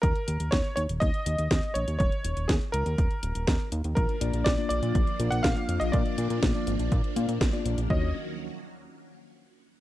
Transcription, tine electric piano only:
\new Staff \with { instrumentName = "Tine electric piano" } { \time 4/4 \key bes \phrygian \tempo 4 = 122 r1 | r1 | r8 <bes d' f' d''>8. <bes d' f' d''>8 <bes d' f' d''>16 r8 <bes d' f' bes'>8. <bes d' f' f''>8.~ | <bes d' f' f''>8 <bes d' f' d''>8. <bes d' f' d''>8 <bes d' f' d''>16 r8 <bes d' f' f''>16 r8 <bes d' f' d''>8 r16 |
<bes ees' ges' des''>8 r2. r8 | }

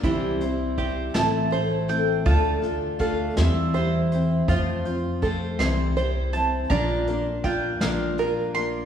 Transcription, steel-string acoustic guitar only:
\new Staff \with { instrumentName = "Steel-string acoustic guitar" } { \time 6/8 \key c \mixolydian \tempo 4. = 54 <c e g c' e' c''>8 <g c' e' c''>8 <g c' e' c''>8 <a, e a c' e' a'>8 <a c' e' a'>8 <a c' e' a'>8 | <d a d' f' a'>8 <d' f' a'>8 <a d' f' a'>8 <e g c' e' c''>8 <g c' e' c''>8 <c' e' c''>8 | <f a c' f' c''>8 <c' f' c''>8 <a c' f' c''>8 <c e g c' e' c''>8 <g c' e' c''>8 <g c' e' c''>8 | <bes, f bes d' f' bes'>8 <bes d' f' bes'>8 <bes d' f' bes'>8 <bes, f bes d' f' bes'>8 <bes d' f' bes'>8 <bes d' f' bes'>8 | }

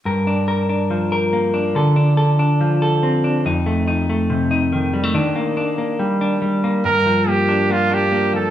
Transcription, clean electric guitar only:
\new Staff \with { instrumentName = "Clean electric guitar" } { \time 4/4 \key g \minor \tempo 4 = 141 <g, bes'>8 d'8 bes'8 d'8 f8 bes'8 bes8 d'8 | <d a'>8 d'8 a'8 d'8 f8 a'8 c'8 d'8 | <f, ees'>8 a8 ees'8 a8 c8 ees'8 ees8 g16 a16 | <ees d'>8 bes8 d'8 bes8 g8 d'8 g8 bes8 |
g,8 f8 bes8 d'8 bes8 d'8 bes8 f8 | }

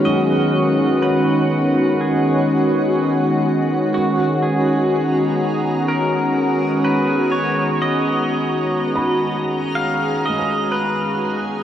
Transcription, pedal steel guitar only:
\new Staff \with { instrumentName = "Pedal steel guitar" } { \time 4/4 \key dis \phrygian \tempo 4 = 62 dis''4 b'4 gis'4. r8 | fis'8 gis'4. ais'4 b'8 cis''8 | dis''2 eis''8 dis''8 b'8. r16 | }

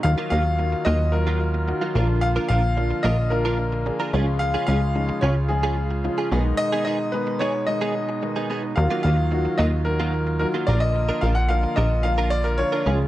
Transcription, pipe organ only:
<<
  \new Staff \with { instrumentName = "Pipe organ" } { \time 4/4 \key ees \minor \tempo 4 = 110 f'1~ | f'1~ | f'2.~ f'8 ees'8~ | ees'1 |
f'1~ | f'2.~ f'8 f'8 | }
  \new Staff \with { instrumentName = "Pipe organ" } { \clef bass \time 4/4 \key ees \minor << { ges2.~ ges8 bes8~ | bes2.~ bes8 aes8~ | aes1~ | aes1 |
ges2.~ ges8 bes8~ | bes2.~ bes8 aes8 | } \\ { ees2.~ ees8 d8~ | d2.~ d8 des8~ | des2.~ des8 ces8~ | ces1 |
ees2.~ ees8 d8~ | d2.~ d8 des8 | } >> }
>>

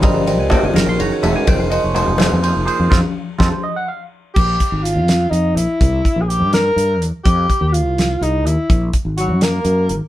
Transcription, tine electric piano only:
\new Staff \with { instrumentName = "Tine electric piano" } { \time 6/8 \key bes \dorian \tempo 4. = 83 << { bes''8. aes''16 g''16 aes''16 bes''16 c'''16 bes''16 des''16 fes''16 aes''16 | g''16 f''16 ees''16 des''16 c''4. r8 | r4 a''16 c''16 ees''16 ges''16 f''8 r8 | r2. |
r2. | r2. | r2. | } \\ { <g c' f' bes' ees''>8 <g c' f' bes' ees''>8 <g c' f' bes' ees''>8 <ees aes des' ges' bes'>8 <ees aes des' ges' des''>8 <ees aes des' ges' bes'>8 | <f bes ees' aes' c''>8 <f bes ees' aes' c''>8 <f bes ees' aes'>4 <f bes ees' aes' c''>8 <f bes ees' aes' c''>8 | <c' ees' f'>8 r8 <c' ees' f'>8 r4. | r2. |
r2. | r2. | r2. | } >> }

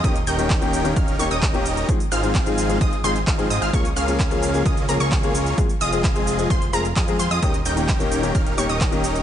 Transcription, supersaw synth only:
\new Staff \with { instrumentName = "Supersaw synth" } { \time 4/4 \key ees \mixolydian \tempo 4 = 130 <des' ees' g' bes' ees''>16 r16 <des' ees' g' bes' g''>4. <des' ees' g' bes' f''>8 <des' ees' g' bes' des''>16 <des' ees' g' bes' ees''>4~ <des' ees' g' bes' ees''>16 | r8 <c' ees' f' aes' f''>4. <c' ees' f' aes' ees''>16 r16 <c' ees' f' aes' c''>16 r16 <c' ees' f' aes' f''>8 <c' ees' f' aes' ees''>16 <c' ees' f' aes' f''>16 | <bes des' f' aes' des''>16 r16 <bes des' f' aes' f''>4. <bes des' f' aes' ees''>8 <bes des' f' aes' bes'>16 <bes des' f' aes' des''>4~ <bes des' f' aes' des''>16 | r8 <f' aes' ees''>4. <f' aes' c''>16 r16 <f' aes' bes'>16 r16 <f' aes' ees''>8 <f' aes' c''>16 <f' aes' ees''>16 |
<des' ees' g' bes' ees''>16 r16 <des' ees' g' bes' g''>4. <des' ees' g' bes' f''>8 <des' ees' g' bes' des''>16 <des' ees' g' bes' ees''>4~ <des' ees' g' bes' ees''>16 | }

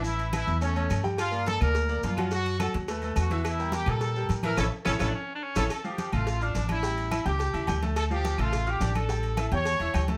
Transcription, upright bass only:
\new Staff \with { instrumentName = "Upright bass" } { \clef bass \time 4/4 \key a \phrygian \tempo 4 = 212 a,,4. e,4. g,4~ | g,4. d,4. fis,4~ | fis,4. dis,4. e,4~ | e,4. bes,4. a,4 |
a,,8 r8 a,,8 a,,8 r4. a,,8 | \key d \minor r4. a,,4. a,,4~ | a,,4. cis,4 cis,8 d,4~ | d,4. a,,4. a,,4~ |
a,,4. e,4 e,8 d,4 | }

